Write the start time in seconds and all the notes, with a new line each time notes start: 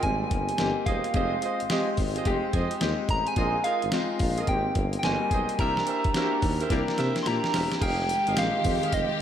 0.03 G#1 G3 A#3 C4 D#4 G#5, kick, closed hi-hat
0.31 G1, kick, closed hi-hat
0.49 closed hi-hat
0.58 G1 A#3 C4 D#4 G4, snare, closed hi-hat
0.86 E1 G4 G#4 C5 D#5 F5, kick, closed hi-hat
1.04 closed hi-hat
1.14 F1 G#3 C4 D#4 F4 G4 G#4 C5 D#5, kick, closed hi-hat
1.42 F4 G#4 C5 D#5, closed hi-hat
1.60 G#1, closed hi-hat
1.70 G#3 C4 D#4 F4 G4 G#4 C5 D#5, snare, closed hi-hat
1.97 G#1, kick, open hi-hat
2.15 F4 G#4 C5 D#5, closed hi-hat
2.25 F1 G#3 C4 D#4 G4, kick, closed hi-hat
2.53 F2 F4 G#4 C5 D#5, kick, closed hi-hat
2.71 closed hi-hat
2.81 D#2 G#3 C4 D#4 G4, snare, closed hi-hat
3.09 A1 A#5, kick, closed hi-hat
3.27 G#5, closed hi-hat
3.36 A#1 G#3 C4 D#4 F4 G#4 A#4 D#5 G#5, kick, closed hi-hat
3.64 F4 G#4 A#4 D#5 F5, closed hi-hat
3.82 G#1, closed hi-hat
3.92 G#3 C4 D#4 F4, snare, closed hi-hat
4.19 A#1, kick, open hi-hat
4.38 F4 G#4 A#4 D#5, closed hi-hat
4.47 G#1 A#3 C4 D#4 G4 G5, kick, closed hi-hat
4.75 G1, kick, closed hi-hat
4.93 closed hi-hat
4.99 G5, closed hi-hat
5.03 G1 A#3 C4 D#4 F#4 G#5, snare
5.12 G3
5.31 B1 G4 G#4 C5 D#5, kick, closed hi-hat
5.49 closed hi-hat
5.59 C2 A#3 D4 E4 G4 A#4 C5 E5 A#5, kick, closed hi-hat
5.77 snare
5.87 G4 A#4 C5 E5, closed hi-hat
6.04 D#2, kick, closed hi-hat
6.14 A#3 D4 E4 F#4 G4 A#4 C5 E5, snare, closed hi-hat
6.23 G4
6.42 D#2, kick, open hi-hat
6.61 G4 A#4 C5 E5, closed hi-hat
6.70 C2 A#3 D4 E4 G4, kick, snare, closed hi-hat
6.88 snare
6.98 C3 G4 A#4 C5 E5, snare, closed hi-hat
7.16 snare, closed hi-hat
7.23 A#2 A#3 D4 C6, snare, closed hi-hat
7.27 E4 G4 A#5
7.44 snare
7.53 E1 G4 A#4 C5 E5, snare, open hi-hat
7.72 snare, closed hi-hat
7.81 F1 D#3 G#3 G4 G#4 D#5 F5 G5, kick, closed hi-hat, crash, tambourine
8.09 closed hi-hat, tambourine
8.27 G#1 G4 G#4 D#5 F5, closed hi-hat
8.37 A#1 G#3 C4 D#4 G4 F5, snare, closed hi-hat, tambourine
8.64 F2 G#3 C4 D#4 G4, kick, open hi-hat, tambourine
8.83 G4 G#4 D#5 F5, closed hi-hat
8.92 F1 D#5, kick, closed hi-hat, tambourine